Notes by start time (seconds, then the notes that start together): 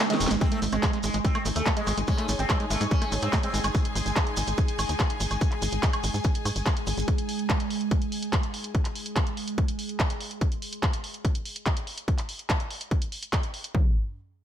Already playing: C#3 G#3 D#4 C5
0.00 shekere
0.10 D#3 G#3, snare, closed hi-hat
0.20 D#1 G#3, open hi-hat, shekere
0.27 G#1 G#3, snare, closed hi-hat, shekere
0.41 G#3 C4 D#4 G#4, kick, closed hi-hat, shekere
0.52 A3, closed hi-hat
0.62 G#1 A3, open hi-hat, shekere
0.72 G#1 G#3 C4, closed hi-hat, high woodblock, shekere
0.83 G#3, kick, clap, closed hi-hat, shekere
0.87 G#4
0.93 G#3, closed hi-hat
1.03 G#1 G#3, open hi-hat, shekere
1.14 G#1 G#3, closed hi-hat, shekere
1.25 G3 C4, kick, closed hi-hat, shekere
1.35 A3, closed hi-hat, high woodblock
1.45 G#1 A3, open hi-hat, shekere
1.56 D#2 A3, closed hi-hat, shekere
1.66 A3, kick, clap, closed hi-hat, shekere
1.70 G#5
1.77 G#3, closed hi-hat
1.87 G#1 G#3, open hi-hat, high woodblock, shekere
1.97 G#1 G#3, closed hi-hat, shekere
2.07 G#3 C#4, kick, closed hi-hat, shekere
2.18 A3, clap, closed hi-hat
2.28 G#1 A3, open hi-hat, shekere
2.39 G#1 C4, closed hi-hat, shekere
2.50 G#3, kick, clap, closed hi-hat, high woodblock, shekere
2.60 G#3, closed hi-hat
2.70 G#1 G#3 A3, open hi-hat, shekere
2.81 G#2 G#3, closed hi-hat, shekere
2.91 G3 C#4, kick, closed hi-hat, shekere
3.02 A3, closed hi-hat, high woodblock
3.12 G#1 A3, open hi-hat, shekere
3.22 G#2 C4, closed hi-hat, shekere
3.33 A3, kick, clap, closed hi-hat, shekere
3.43 G#3 C4, closed hi-hat
3.54 G#1 G#3, open hi-hat, shekere
3.64 G#1 G#3, closed hi-hat, high woodblock, shekere
3.75 kick, closed hi-hat, shekere
3.85 closed hi-hat
3.95 G#1, open hi-hat, shekere
4.06 G#1, closed hi-hat, shekere
4.16 kick, clap, closed hi-hat, high woodblock, shekere
4.27 closed hi-hat
4.37 G#1, open hi-hat, shekere
4.47 G#1, closed hi-hat, shekere
4.57 kick, closed hi-hat, shekere
4.68 closed hi-hat
4.79 G#1, open hi-hat, high woodblock, shekere
4.89 D#2, closed hi-hat, shekere
4.99 kick, clap, closed hi-hat, shekere
5.10 closed hi-hat
5.20 G#1, open hi-hat, shekere
5.31 G#1, closed hi-hat, high woodblock, shekere
5.41 kick, closed hi-hat, shekere
5.52 clap, closed hi-hat
5.62 G#1, open hi-hat, shekere
5.72 G#1, closed hi-hat, shekere
5.83 kick, clap, closed hi-hat, shekere
5.93 closed hi-hat, high woodblock
6.04 G#1, open hi-hat, shekere
6.14 G#2, closed hi-hat, shekere
6.24 kick, closed hi-hat, shekere
6.35 closed hi-hat
6.45 G#2, open hi-hat, high woodblock, shekere
6.56 G#1, closed hi-hat, shekere
6.66 kick, clap, closed hi-hat, shekere
6.77 closed hi-hat
6.87 G#1, open hi-hat, shekere
6.97 G#1, closed hi-hat, shekere
7.08 kick, closed hi-hat
7.18 closed hi-hat
7.29 open hi-hat
7.39 closed hi-hat
7.50 kick, clap, closed hi-hat
7.60 closed hi-hat
7.70 open hi-hat
7.81 closed hi-hat
7.91 kick, closed hi-hat
8.02 closed hi-hat
8.12 open hi-hat
8.23 closed hi-hat
8.33 kick, clap, closed hi-hat
8.43 closed hi-hat
8.54 open hi-hat
8.64 closed hi-hat
8.75 kick, closed hi-hat
8.85 clap, closed hi-hat
8.95 open hi-hat
9.06 closed hi-hat
9.16 kick, clap, closed hi-hat
9.27 closed hi-hat
9.37 open hi-hat
9.48 closed hi-hat
9.58 kick, closed hi-hat
9.68 closed hi-hat
9.79 open hi-hat
9.89 closed hi-hat
10.00 kick, clap, closed hi-hat
10.10 closed hi-hat
10.20 open hi-hat
10.31 closed hi-hat
10.41 kick, closed hi-hat
10.52 closed hi-hat
10.62 open hi-hat
10.73 closed hi-hat
10.83 kick, clap, closed hi-hat
10.93 closed hi-hat
11.04 open hi-hat
11.14 closed hi-hat
11.25 kick, closed hi-hat
11.35 closed hi-hat
11.45 open hi-hat
11.56 closed hi-hat
11.66 kick, clap, closed hi-hat
11.77 closed hi-hat
11.87 open hi-hat
11.98 closed hi-hat
12.08 kick, closed hi-hat
12.18 clap, closed hi-hat
12.29 open hi-hat
12.39 closed hi-hat
12.50 kick, clap, closed hi-hat
12.60 closed hi-hat
12.70 open hi-hat
12.81 closed hi-hat
12.91 kick, closed hi-hat
13.02 closed hi-hat
13.12 open hi-hat
13.23 closed hi-hat
13.33 kick, clap, closed hi-hat
13.43 closed hi-hat
13.54 open hi-hat
13.64 closed hi-hat
13.75 kick, floor tom